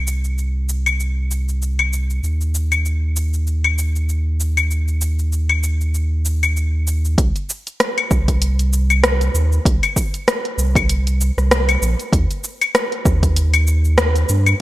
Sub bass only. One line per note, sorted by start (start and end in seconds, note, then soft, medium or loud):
0.00 2.21 C2 medium
2.23 7.15 D#2 medium
7.18 7.32 C2 medium
8.11 9.30 C2 medium
9.34 9.59 D#2 medium
9.66 9.79 C2 medium
10.58 11.31 C2 medium
11.38 11.77 C2 medium
11.82 11.95 A#1 loud
12.13 12.26 D#2 medium
13.06 14.25 D#2 medium
14.29 14.54 G2 medium